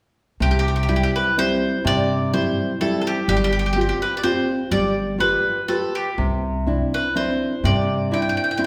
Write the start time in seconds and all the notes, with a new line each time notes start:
0.40 C2 C3 G4
0.51 G4
0.59 G4
0.68 G4
0.76 G4
0.83 G4
0.88 G3 C4 E4 G4
0.96 G4
1.03 G4
1.16 B4
1.37 G3 C4 E4 C5
1.85 G2 C3 D5
2.33 G3 C4 E4 C5
2.80 G3 C4 E4 A4
3.01 A4
3.07 G4
3.28 G1 G3 G4
3.37 G4
3.44 G4
3.52 G4
3.59 G4
3.66 G4
3.73 C4 F4 G4
3.81 G4
3.89 G4
4.02 B4
4.17 D5
4.23 C4 F4 G4 C5
4.71 G1 G3 D5
5.18 F4 G4 B4
5.68 F4 G4 A4 B4
5.95 G4
6.18 C2 C3
6.67 C4 D4 E4
6.94 B4
7.15 C4 D4 E4 C5
7.64 G2 C3 D5
8.11 C4 D4 E4 G5
8.22 G5
8.29 G5
8.37 G5
8.44 G5
8.51 G5
8.57 C4 D4 E4 G5